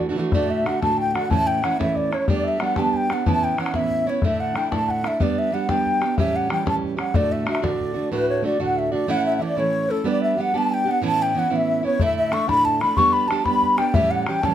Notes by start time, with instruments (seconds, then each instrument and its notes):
Already playing: steel-string acoustic guitar E3
0.00 bodhran
0.09 steel-string acoustic guitar E3 A3 D4 F#4
0.16 steel-string acoustic guitar E3 A3 D4 F#4
0.32 steel-string acoustic guitar D2 A2 D3 A3 D4 F#4, flute D5, bodhran
0.49 flute E5
0.66 steel-string acoustic guitar D3 A3 D4 F#4, flute F#5, bodhran
0.82 steel-string acoustic guitar D2 A2 D3 A3 D4 F#4, flute A5, bodhran
0.97 flute G5
1.11 steel-string acoustic guitar F#4, flute F#5 G5
1.15 steel-string acoustic guitar D3 A3 D4, bodhran
1.30 steel-string acoustic guitar A2 E3 A3 C#4 E4, flute A5, bodhran
1.47 flute G5
1.62 steel-string acoustic guitar E3 A3 C#4 E4, flute F#5, bodhran
1.79 steel-string acoustic guitar A2 E3 A3 C#4 E4, flute E5, bodhran
1.95 flute D5, bodhran
2.11 steel-string acoustic guitar A3 C#4 E4, flute C#5, bodhran
2.28 steel-string acoustic guitar G3 B3 D4 G4, flute D5, bodhran
2.44 flute E5
2.48 flute E5
2.60 steel-string acoustic guitar G3 B3 D4 G4, flute F#5, bodhran
2.64 flute F#5
2.76 steel-string acoustic guitar G3 B3 D4 G4, flute A5, bodhran
2.93 flute G5, bodhran
3.09 steel-string acoustic guitar B3 D4 G4, flute F#5, bodhran
3.26 steel-string acoustic guitar A2 E3 B3 C#4 E4, flute A5, bodhran
3.42 flute G5
3.57 steel-string acoustic guitar E3 B3 C#4 E4, flute F#5, bodhran
3.66 bodhran
3.74 steel-string acoustic guitar A2 E3 B3 C#4 E4, flute E5, bodhran
3.90 bodhran
4.07 steel-string acoustic guitar B3 C#4 E4, flute C#5
4.22 steel-string acoustic guitar A2 D3 A3 D4 E4, flute E5, bodhran
4.40 flute F#5
4.55 steel-string acoustic guitar D3 A3 D4 E4, flute G5, bodhran
4.71 steel-string acoustic guitar A2 D3 A3 D4 E4, flute A5, bodhran
4.88 flute F#5, bodhran
5.04 steel-string acoustic guitar A3 D4 E4, flute E5, bodhran
5.20 steel-string acoustic guitar G3 B3 D4 G4, flute D5, bodhran
5.37 flute E5
5.52 steel-string acoustic guitar G3 B3 D4 G4, flute F#5
5.69 steel-string acoustic guitar G3 B3 D4 G4, flute G5, bodhran
5.86 bodhran
6.01 steel-string acoustic guitar B3 D4 G4, bodhran
6.17 steel-string acoustic guitar A2 E3 G3 C#4 G4, flute E5, bodhran
6.34 flute F#5
6.49 steel-string acoustic guitar E3 G3 C#4 G4, flute G5, bodhran
6.66 steel-string acoustic guitar A2 E3 G3 C#4 G4, flute A5, bodhran
6.83 bodhran
6.97 steel-string acoustic guitar G3 C#4 G4, flute F#5, bodhran
7.14 steel-string acoustic guitar D2 A2 D3 A3 D4 F#4, flute D5, bodhran
7.32 flute E5
7.45 steel-string acoustic guitar D3 A3 D4 F#4, flute E5, bodhran
7.50 flute E5
7.55 bodhran
7.62 steel-string acoustic guitar D2 A2 D3 A3 D4 F#4, flute D5, bodhran
7.80 bodhran
7.94 steel-string acoustic guitar D3 A3 D4 F#4
8.11 steel-string acoustic guitar D2 A2 D3 A3 D4 F#4, flute B4
8.30 flute C#5
8.43 steel-string acoustic guitar D3 A3 D4 F#4, flute D5
8.60 steel-string acoustic guitar D2 A2 D3 A3 D4 F#4, flute F#5
8.73 flute F#5
8.77 flute E5
8.91 steel-string acoustic guitar D3 A3 D4 F#4, flute D5
9.07 steel-string acoustic guitar A2 E3 A3 C#4 E4, flute F#5
9.26 flute E5
9.37 steel-string acoustic guitar E3, flute E5
9.41 steel-string acoustic guitar A3 C#4 E4, flute D5
9.57 steel-string acoustic guitar A2 E3 A3 C#4 E4, flute C#5
9.89 steel-string acoustic guitar A3 C#4 E4, flute A4
10.04 steel-string acoustic guitar G3 B3 D4 G4, flute D5
10.22 flute E5
10.37 steel-string acoustic guitar G3 B3 D4 G4, flute F#5
10.54 steel-string acoustic guitar G3 B3 D4 G4, flute A5
10.71 flute G5
10.85 steel-string acoustic guitar B3 D4 G4, flute F#5
10.91 flute F#5
11.02 steel-string acoustic guitar A2 E3 B3 C#4 E4, flute A5
11.19 flute G5
11.34 steel-string acoustic guitar E3 B3 C#4 E4, flute F#5
11.39 flute F#5
11.50 steel-string acoustic guitar A2 E3 B3 C#4 E4, flute E5
11.56 flute E5
11.83 steel-string acoustic guitar B3 C#4 E4, flute C#5
11.99 steel-string acoustic guitar A2 D3 A3 D4 E4, flute E5, bodhran
12.16 flute E5
12.31 steel-string acoustic guitar D3 A3 D4 E4, flute C#6, bodhran
12.48 steel-string acoustic guitar A2 D3 A3 D4 E4, flute B5, bodhran
12.64 flute A5, bodhran
12.80 steel-string acoustic guitar A3 D4 E4, flute B5, bodhran
12.97 steel-string acoustic guitar G3 B3 D4 G4, flute C#6, bodhran
13.13 flute B5
13.28 steel-string acoustic guitar G3 B3 D4, flute A5, bodhran
13.32 steel-string acoustic guitar G4
13.44 steel-string acoustic guitar G3 B3 D4 G4, flute B5, bodhran
13.62 bodhran
13.77 steel-string acoustic guitar B3 D4 G4, flute G5, bodhran
13.94 steel-string acoustic guitar A2 E3 G3 C#4 G4, flute E5, bodhran
14.11 flute F#5
14.26 steel-string acoustic guitar E3 G3 C#4 G4, flute G5, bodhran
14.42 steel-string acoustic guitar A2 E3 G3 C#4 G4, flute A5, bodhran